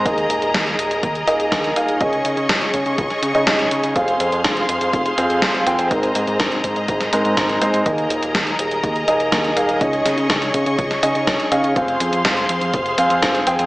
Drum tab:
HH |xxxxxxxxxxxxxxxx|xxxxxxxxxxxxxxxx|xxxxxxxxxxxxxxxx|xxxxxxxxxxxxxxxx|
SD |----o-------o---|----o----o--o---|----o-------o---|----o----o--o---|
BD |o---o---o---o---|o---o-o-o---o---|o---o---o---o---|o---o-o-o---o---|

HH |xxxxxxxxxxxxxxxx|xxxxxxxxxxxxxxxx|xxxxxxxxxxxxxxxx|
SD |----o-------o---|--o-o----o--o---|----o-------o---|
BD |o---o---o---o---|o---o-o-o---o---|o---o---o---o---|